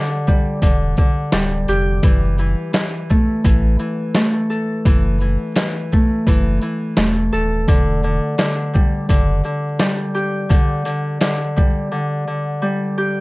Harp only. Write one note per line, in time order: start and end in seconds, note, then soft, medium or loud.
0.00 0.61 D3 medium
0.00 1.67 G4 medium
0.27 0.67 G3 medium
0.62 0.97 D3 medium
0.98 2.08 D3 medium
1.33 2.08 G3 loud
1.69 4.04 G4 medium
2.04 2.38 E3 medium
2.39 2.73 E3 medium
2.74 3.43 E3 medium
3.10 4.16 A3 medium
3.44 3.78 E3 medium
3.79 4.85 E3 medium
4.16 5.92 A3 medium
4.50 7.31 A4 medium
4.86 5.20 E3 medium
5.21 5.56 E3 medium
5.57 6.26 E3 medium
5.92 6.97 A3 medium
6.27 6.61 E3 medium
6.62 7.73 E3 medium
6.97 10.30 A3 medium
7.32 9.52 A4 loud
7.68 8.03 D3 loud
8.04 8.37 D3 medium
8.38 9.08 D3 medium
8.74 9.14 G3 medium
9.09 9.43 D3 medium
9.45 10.48 D3 medium
9.79 10.55 G3 medium
10.14 12.97 G4 loud
10.49 10.84 D3 loud
10.85 11.20 D3 medium
11.21 11.90 D3 medium
11.56 11.97 G3 medium
11.92 12.26 D3 medium
12.27 13.21 D3 medium
12.62 13.21 G3 medium
12.98 13.21 G4 medium